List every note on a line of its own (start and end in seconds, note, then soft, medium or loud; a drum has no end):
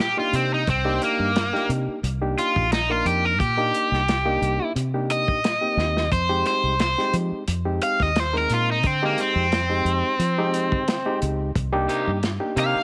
0.00 0.14 A#2 medium
0.00 0.18 G4 loud
0.00 snare loud
0.17 0.62 A#3 medium
0.17 0.62 D4 medium
0.17 0.62 D#4 medium
0.17 0.34 F4 medium
0.17 0.62 G4 medium
0.33 0.64 C3 medium
0.33 0.52 C4 medium
0.33 closed hi-hat medium
0.54 0.68 D#4 medium
0.67 0.98 C2 medium
0.67 1.02 C4 loud
0.67 kick medium
0.67 closed hi-hat medium
0.85 1.30 A#3 medium
0.85 1.30 D4 medium
0.85 1.30 D#4 medium
0.85 1.30 G4 loud
1.02 1.69 A#3 medium
1.02 closed hi-hat medium
1.19 1.50 G2 medium
1.36 snare loud
1.36 closed hi-hat medium
1.53 1.98 A#3 medium
1.53 1.98 D4 medium
1.53 1.98 D#4 medium
1.53 1.98 G4 medium
1.53 snare soft
1.69 1.86 C3 medium
1.69 closed hi-hat medium
1.88 muted fingered electric bass stroke soft
2.03 2.34 C2 loud
2.03 closed hi-hat medium
2.22 2.66 A#3 medium
2.22 2.66 D4 medium
2.22 2.66 D#4 medium
2.22 2.66 G4 medium
2.38 2.71 F4 medium
2.38 closed hi-hat medium
2.56 3.02 A#1 medium
2.56 kick medium
2.72 2.91 D#4 loud
2.72 snare loud
2.72 closed hi-hat medium
2.90 3.34 A#3 medium
2.90 3.34 D4 medium
2.90 3.34 D#4 medium
2.90 3.05 F4 medium
2.90 3.34 A#4 medium
3.05 3.40 F2 medium
3.05 3.25 G4 medium
3.05 closed hi-hat medium
3.25 3.40 A#4 medium
3.40 3.70 A#2 medium
3.40 4.72 G4 medium
3.40 kick loud
3.40 closed hi-hat medium
3.58 4.02 A#3 medium
3.58 4.02 D4 medium
3.58 4.02 D#4 medium
3.58 4.02 G4 medium
3.74 closed hi-hat medium
3.91 4.37 C2 medium
3.91 snare soft
4.08 snare medium
4.08 closed hi-hat medium
4.25 4.70 A#3 medium
4.25 4.70 D4 medium
4.25 4.70 D#4 medium
4.25 4.70 G4 medium
4.42 4.58 C2 medium
4.42 closed hi-hat medium
4.75 5.28 C3 medium
4.75 closed hi-hat medium
4.94 5.38 A#3 medium
4.94 5.38 D4 medium
4.94 5.38 D#4 medium
4.94 5.38 G4 medium
5.10 6.09 D#5 medium
5.10 closed hi-hat medium
5.28 5.59 A#2 medium
5.28 kick medium
5.44 snare loud
5.44 closed hi-hat medium
5.61 6.06 A#3 medium
5.61 6.06 C4 medium
5.61 6.06 D#4 medium
5.61 6.06 G4 medium
5.77 6.08 D#2 medium
5.77 snare medium
5.97 snare medium
6.11 6.42 F2 medium
6.11 6.45 C5 medium
6.11 kick medium
6.11 closed hi-hat medium
6.29 6.74 G#3 medium
6.29 6.74 C4 medium
6.29 6.74 D#4 medium
6.29 6.74 G4 medium
6.46 6.79 C5 medium
6.46 snare soft
6.46 closed hi-hat medium
6.63 6.94 C2 medium
6.80 7.13 C5 medium
6.80 snare medium
6.80 closed hi-hat medium
6.98 7.42 G#3 medium
6.98 7.42 C4 medium
6.98 7.42 D#4 medium
6.98 7.42 G4 medium
6.98 snare soft
7.13 7.30 F3 medium
7.13 closed hi-hat medium
7.32 muted fingered electric bass stroke soft
7.48 7.78 F2 medium
7.48 closed hi-hat medium
7.65 8.10 G#3 medium
7.65 8.10 C4 medium
7.65 8.10 D#4 medium
7.65 8.10 G4 medium
7.82 8.02 F5 medium
7.82 closed hi-hat medium
8.00 8.45 D#2 medium
8.00 8.20 D#5 medium
8.00 kick medium
8.00 snare soft
8.16 8.35 C5 medium
8.16 snare loud
8.16 closed hi-hat medium
8.33 8.78 G#3 medium
8.33 8.78 C4 medium
8.33 8.78 D#4 medium
8.33 8.78 A#4 medium
8.33 snare soft
8.38 8.51 A#4 medium
8.50 8.84 A#2 medium
8.50 8.69 F4 medium
8.50 closed hi-hat medium
8.72 8.86 D#4 medium
8.83 9.14 D3 medium
8.83 9.02 C4 medium
8.83 kick loud
8.83 closed hi-hat medium
9.02 9.46 G#3 medium
9.02 9.19 A#3 medium
9.02 9.46 C4 medium
9.02 9.46 D#4 medium
9.02 9.46 G4 medium
9.18 11.19 C4 medium
9.18 closed hi-hat medium
9.35 9.81 F2 medium
9.52 snare loud
9.52 closed hi-hat medium
9.70 10.14 G#3 medium
9.70 10.14 C4 medium
9.70 10.14 D#4 medium
9.70 10.14 G4 medium
9.85 10.01 F2 medium
9.85 closed hi-hat medium
10.19 10.72 F3 medium
10.19 closed hi-hat medium
10.38 10.82 G#3 medium
10.38 10.82 C4 medium
10.38 10.82 D#4 medium
10.38 10.82 G4 medium
10.54 closed hi-hat medium
10.72 11.02 D3 medium
10.72 kick medium
10.88 snare loud
10.88 closed hi-hat medium
11.06 11.50 G#3 medium
11.06 11.50 C4 medium
11.06 11.50 D#4 medium
11.06 11.50 G4 medium
11.22 11.52 C#2 medium
11.22 closed hi-hat medium
11.55 11.86 C2 medium
11.55 kick loud
11.55 closed hi-hat medium
11.72 12.17 A#3 medium
11.72 12.17 D4 loud
11.72 12.17 D#4 medium
11.72 12.17 G4 loud
11.88 12.10 C3 medium
11.88 12.10 A#3 medium
11.88 12.10 D#4 medium
11.88 12.11 G4 medium
11.88 closed hi-hat medium
12.07 12.38 G2 medium
12.23 snare medium
12.23 closed hi-hat medium
12.40 12.83 A#3 medium
12.40 12.83 D4 medium
12.40 12.83 D#4 medium
12.40 12.83 G4 medium
12.56 12.73 C3 medium
12.56 12.78 C3 medium
12.56 12.78 A#3 medium
12.56 12.79 D#4 medium
12.56 12.79 G4 medium
12.56 12.83 F5 loud
12.56 closed hi-hat medium
12.75 muted fingered electric bass stroke soft